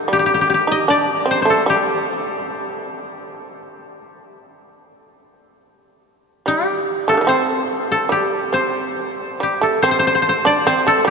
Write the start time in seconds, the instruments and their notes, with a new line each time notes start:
Already playing: koto D#4 G4 A4 C5
0.08 shamisen G3
0.13 koto G4
0.19 koto G4
0.26 koto G4
0.34 koto G4
0.41 koto G4
0.50 koto G4
0.54 koto G4
0.67 shamisen D#4
0.72 koto D#5
0.88 shamisen D4, koto D5
1.26 shamisen C4
1.31 koto C5
1.42 shamisen A3, koto C5
1.50 koto A4
1.66 shamisen G3, koto G4
6.46 shamisen G3, koto G4
7.08 shamisen C3 A3, koto A4
7.14 shamisen D3 D#3
7.21 shamisen G3 A3
7.27 shamisen C4, koto C5
7.67 koto A4
7.92 koto A4
8.09 shamisen G3, koto G4
8.53 shamisen C4, koto C5
9.08 shamisen A3
9.40 shamisen G3, koto G4
9.61 shamisen A3, koto A4
9.82 shamisen C4, koto C5
9.91 koto C5
9.99 koto C5
10.07 koto C5
10.15 koto C5
10.22 koto C5
10.29 koto C5
10.45 shamisen D4, koto D5
10.67 shamisen C4, koto C5
10.87 shamisen A3, koto A4
11.05 shamisen G3